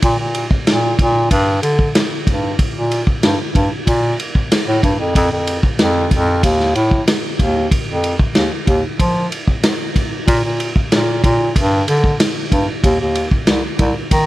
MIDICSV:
0, 0, Header, 1, 3, 480
1, 0, Start_track
1, 0, Tempo, 640342
1, 22, Time_signature, 4, 2, 24, 8
1, 10692, End_track
2, 0, Start_track
2, 0, Title_t, "Bass clarinet"
2, 0, Program_c, 0, 71
2, 22, Note_on_c, 0, 46, 100
2, 124, Note_off_c, 0, 46, 0
2, 145, Note_on_c, 0, 46, 73
2, 347, Note_off_c, 0, 46, 0
2, 504, Note_on_c, 0, 46, 80
2, 706, Note_off_c, 0, 46, 0
2, 742, Note_on_c, 0, 46, 96
2, 945, Note_off_c, 0, 46, 0
2, 983, Note_on_c, 0, 43, 100
2, 1186, Note_off_c, 0, 43, 0
2, 1218, Note_on_c, 0, 50, 81
2, 1423, Note_off_c, 0, 50, 0
2, 1703, Note_on_c, 0, 43, 80
2, 1906, Note_off_c, 0, 43, 0
2, 2062, Note_on_c, 0, 46, 70
2, 2265, Note_off_c, 0, 46, 0
2, 2424, Note_on_c, 0, 43, 78
2, 2525, Note_off_c, 0, 43, 0
2, 2660, Note_on_c, 0, 43, 85
2, 2763, Note_off_c, 0, 43, 0
2, 2903, Note_on_c, 0, 46, 91
2, 3106, Note_off_c, 0, 46, 0
2, 3505, Note_on_c, 0, 45, 83
2, 3612, Note_off_c, 0, 45, 0
2, 3621, Note_on_c, 0, 43, 79
2, 3731, Note_off_c, 0, 43, 0
2, 3742, Note_on_c, 0, 41, 74
2, 3851, Note_off_c, 0, 41, 0
2, 3863, Note_on_c, 0, 41, 101
2, 3965, Note_off_c, 0, 41, 0
2, 3986, Note_on_c, 0, 41, 76
2, 4188, Note_off_c, 0, 41, 0
2, 4348, Note_on_c, 0, 41, 84
2, 4549, Note_off_c, 0, 41, 0
2, 4582, Note_on_c, 0, 41, 92
2, 4786, Note_off_c, 0, 41, 0
2, 4823, Note_on_c, 0, 39, 97
2, 5027, Note_off_c, 0, 39, 0
2, 5062, Note_on_c, 0, 45, 91
2, 5266, Note_off_c, 0, 45, 0
2, 5543, Note_on_c, 0, 39, 93
2, 5747, Note_off_c, 0, 39, 0
2, 5910, Note_on_c, 0, 41, 74
2, 6111, Note_off_c, 0, 41, 0
2, 6265, Note_on_c, 0, 39, 82
2, 6367, Note_off_c, 0, 39, 0
2, 6503, Note_on_c, 0, 39, 94
2, 6606, Note_off_c, 0, 39, 0
2, 6742, Note_on_c, 0, 53, 86
2, 6946, Note_off_c, 0, 53, 0
2, 7704, Note_on_c, 0, 46, 110
2, 7806, Note_off_c, 0, 46, 0
2, 7828, Note_on_c, 0, 46, 78
2, 8029, Note_off_c, 0, 46, 0
2, 8186, Note_on_c, 0, 46, 82
2, 8388, Note_off_c, 0, 46, 0
2, 8421, Note_on_c, 0, 46, 91
2, 8625, Note_off_c, 0, 46, 0
2, 8665, Note_on_c, 0, 43, 95
2, 8868, Note_off_c, 0, 43, 0
2, 8905, Note_on_c, 0, 50, 89
2, 9107, Note_off_c, 0, 50, 0
2, 9383, Note_on_c, 0, 43, 86
2, 9485, Note_off_c, 0, 43, 0
2, 9620, Note_on_c, 0, 39, 99
2, 9723, Note_off_c, 0, 39, 0
2, 9750, Note_on_c, 0, 39, 76
2, 9950, Note_off_c, 0, 39, 0
2, 10104, Note_on_c, 0, 36, 76
2, 10205, Note_off_c, 0, 36, 0
2, 10340, Note_on_c, 0, 36, 86
2, 10442, Note_off_c, 0, 36, 0
2, 10581, Note_on_c, 0, 51, 88
2, 10692, Note_off_c, 0, 51, 0
2, 10692, End_track
3, 0, Start_track
3, 0, Title_t, "Drums"
3, 18, Note_on_c, 9, 51, 84
3, 20, Note_on_c, 9, 36, 102
3, 93, Note_off_c, 9, 51, 0
3, 95, Note_off_c, 9, 36, 0
3, 259, Note_on_c, 9, 51, 61
3, 334, Note_off_c, 9, 51, 0
3, 380, Note_on_c, 9, 36, 88
3, 455, Note_off_c, 9, 36, 0
3, 502, Note_on_c, 9, 51, 73
3, 504, Note_on_c, 9, 38, 89
3, 577, Note_off_c, 9, 51, 0
3, 579, Note_off_c, 9, 38, 0
3, 740, Note_on_c, 9, 36, 85
3, 742, Note_on_c, 9, 51, 56
3, 815, Note_off_c, 9, 36, 0
3, 817, Note_off_c, 9, 51, 0
3, 981, Note_on_c, 9, 36, 83
3, 981, Note_on_c, 9, 51, 86
3, 1056, Note_off_c, 9, 36, 0
3, 1056, Note_off_c, 9, 51, 0
3, 1222, Note_on_c, 9, 51, 62
3, 1297, Note_off_c, 9, 51, 0
3, 1341, Note_on_c, 9, 36, 76
3, 1416, Note_off_c, 9, 36, 0
3, 1463, Note_on_c, 9, 51, 78
3, 1464, Note_on_c, 9, 38, 108
3, 1538, Note_off_c, 9, 51, 0
3, 1539, Note_off_c, 9, 38, 0
3, 1701, Note_on_c, 9, 36, 81
3, 1703, Note_on_c, 9, 51, 53
3, 1776, Note_off_c, 9, 36, 0
3, 1778, Note_off_c, 9, 51, 0
3, 1941, Note_on_c, 9, 36, 101
3, 1941, Note_on_c, 9, 51, 68
3, 2016, Note_off_c, 9, 36, 0
3, 2016, Note_off_c, 9, 51, 0
3, 2185, Note_on_c, 9, 51, 56
3, 2260, Note_off_c, 9, 51, 0
3, 2301, Note_on_c, 9, 36, 87
3, 2376, Note_off_c, 9, 36, 0
3, 2422, Note_on_c, 9, 51, 71
3, 2423, Note_on_c, 9, 38, 97
3, 2497, Note_off_c, 9, 51, 0
3, 2498, Note_off_c, 9, 38, 0
3, 2662, Note_on_c, 9, 36, 84
3, 2664, Note_on_c, 9, 51, 60
3, 2737, Note_off_c, 9, 36, 0
3, 2739, Note_off_c, 9, 51, 0
3, 2902, Note_on_c, 9, 36, 83
3, 2903, Note_on_c, 9, 51, 89
3, 2977, Note_off_c, 9, 36, 0
3, 2978, Note_off_c, 9, 51, 0
3, 3145, Note_on_c, 9, 51, 63
3, 3220, Note_off_c, 9, 51, 0
3, 3262, Note_on_c, 9, 36, 78
3, 3337, Note_off_c, 9, 36, 0
3, 3385, Note_on_c, 9, 51, 89
3, 3387, Note_on_c, 9, 38, 110
3, 3460, Note_off_c, 9, 51, 0
3, 3462, Note_off_c, 9, 38, 0
3, 3622, Note_on_c, 9, 36, 78
3, 3624, Note_on_c, 9, 51, 55
3, 3697, Note_off_c, 9, 36, 0
3, 3699, Note_off_c, 9, 51, 0
3, 3863, Note_on_c, 9, 36, 96
3, 3866, Note_on_c, 9, 51, 81
3, 3938, Note_off_c, 9, 36, 0
3, 3941, Note_off_c, 9, 51, 0
3, 4103, Note_on_c, 9, 51, 67
3, 4178, Note_off_c, 9, 51, 0
3, 4222, Note_on_c, 9, 36, 87
3, 4297, Note_off_c, 9, 36, 0
3, 4340, Note_on_c, 9, 51, 72
3, 4341, Note_on_c, 9, 38, 94
3, 4415, Note_off_c, 9, 51, 0
3, 4416, Note_off_c, 9, 38, 0
3, 4581, Note_on_c, 9, 36, 83
3, 4581, Note_on_c, 9, 51, 65
3, 4656, Note_off_c, 9, 36, 0
3, 4656, Note_off_c, 9, 51, 0
3, 4822, Note_on_c, 9, 36, 81
3, 4823, Note_on_c, 9, 51, 84
3, 4897, Note_off_c, 9, 36, 0
3, 4898, Note_off_c, 9, 51, 0
3, 4945, Note_on_c, 9, 38, 33
3, 5019, Note_off_c, 9, 38, 0
3, 5063, Note_on_c, 9, 51, 59
3, 5138, Note_off_c, 9, 51, 0
3, 5183, Note_on_c, 9, 36, 85
3, 5257, Note_off_c, 9, 36, 0
3, 5304, Note_on_c, 9, 51, 86
3, 5305, Note_on_c, 9, 38, 109
3, 5379, Note_off_c, 9, 51, 0
3, 5380, Note_off_c, 9, 38, 0
3, 5543, Note_on_c, 9, 36, 78
3, 5543, Note_on_c, 9, 51, 55
3, 5618, Note_off_c, 9, 36, 0
3, 5618, Note_off_c, 9, 51, 0
3, 5783, Note_on_c, 9, 36, 99
3, 5784, Note_on_c, 9, 51, 76
3, 5858, Note_off_c, 9, 36, 0
3, 5859, Note_off_c, 9, 51, 0
3, 6024, Note_on_c, 9, 51, 61
3, 6099, Note_off_c, 9, 51, 0
3, 6142, Note_on_c, 9, 36, 83
3, 6217, Note_off_c, 9, 36, 0
3, 6259, Note_on_c, 9, 51, 64
3, 6261, Note_on_c, 9, 38, 85
3, 6334, Note_off_c, 9, 51, 0
3, 6336, Note_off_c, 9, 38, 0
3, 6502, Note_on_c, 9, 36, 86
3, 6502, Note_on_c, 9, 51, 62
3, 6576, Note_off_c, 9, 36, 0
3, 6576, Note_off_c, 9, 51, 0
3, 6743, Note_on_c, 9, 36, 88
3, 6743, Note_on_c, 9, 51, 81
3, 6818, Note_off_c, 9, 36, 0
3, 6818, Note_off_c, 9, 51, 0
3, 6986, Note_on_c, 9, 51, 66
3, 7061, Note_off_c, 9, 51, 0
3, 7103, Note_on_c, 9, 36, 75
3, 7178, Note_off_c, 9, 36, 0
3, 7222, Note_on_c, 9, 51, 85
3, 7224, Note_on_c, 9, 38, 108
3, 7297, Note_off_c, 9, 51, 0
3, 7298, Note_off_c, 9, 38, 0
3, 7464, Note_on_c, 9, 36, 79
3, 7465, Note_on_c, 9, 51, 61
3, 7539, Note_off_c, 9, 36, 0
3, 7540, Note_off_c, 9, 51, 0
3, 7703, Note_on_c, 9, 36, 102
3, 7706, Note_on_c, 9, 51, 82
3, 7778, Note_off_c, 9, 36, 0
3, 7780, Note_off_c, 9, 51, 0
3, 7945, Note_on_c, 9, 51, 63
3, 8020, Note_off_c, 9, 51, 0
3, 8064, Note_on_c, 9, 36, 84
3, 8139, Note_off_c, 9, 36, 0
3, 8185, Note_on_c, 9, 51, 74
3, 8186, Note_on_c, 9, 38, 99
3, 8260, Note_off_c, 9, 51, 0
3, 8261, Note_off_c, 9, 38, 0
3, 8423, Note_on_c, 9, 36, 84
3, 8424, Note_on_c, 9, 51, 62
3, 8498, Note_off_c, 9, 36, 0
3, 8499, Note_off_c, 9, 51, 0
3, 8663, Note_on_c, 9, 36, 85
3, 8664, Note_on_c, 9, 51, 85
3, 8738, Note_off_c, 9, 36, 0
3, 8739, Note_off_c, 9, 51, 0
3, 8904, Note_on_c, 9, 51, 66
3, 8979, Note_off_c, 9, 51, 0
3, 9024, Note_on_c, 9, 36, 81
3, 9099, Note_off_c, 9, 36, 0
3, 9145, Note_on_c, 9, 51, 86
3, 9146, Note_on_c, 9, 38, 112
3, 9220, Note_off_c, 9, 51, 0
3, 9221, Note_off_c, 9, 38, 0
3, 9383, Note_on_c, 9, 36, 80
3, 9384, Note_on_c, 9, 51, 61
3, 9458, Note_off_c, 9, 36, 0
3, 9459, Note_off_c, 9, 51, 0
3, 9622, Note_on_c, 9, 36, 105
3, 9624, Note_on_c, 9, 51, 78
3, 9697, Note_off_c, 9, 36, 0
3, 9699, Note_off_c, 9, 51, 0
3, 9860, Note_on_c, 9, 51, 59
3, 9935, Note_off_c, 9, 51, 0
3, 9980, Note_on_c, 9, 36, 83
3, 10055, Note_off_c, 9, 36, 0
3, 10096, Note_on_c, 9, 51, 74
3, 10098, Note_on_c, 9, 38, 91
3, 10171, Note_off_c, 9, 51, 0
3, 10173, Note_off_c, 9, 38, 0
3, 10337, Note_on_c, 9, 51, 63
3, 10339, Note_on_c, 9, 36, 86
3, 10412, Note_off_c, 9, 51, 0
3, 10414, Note_off_c, 9, 36, 0
3, 10578, Note_on_c, 9, 51, 82
3, 10579, Note_on_c, 9, 36, 89
3, 10653, Note_off_c, 9, 51, 0
3, 10654, Note_off_c, 9, 36, 0
3, 10692, End_track
0, 0, End_of_file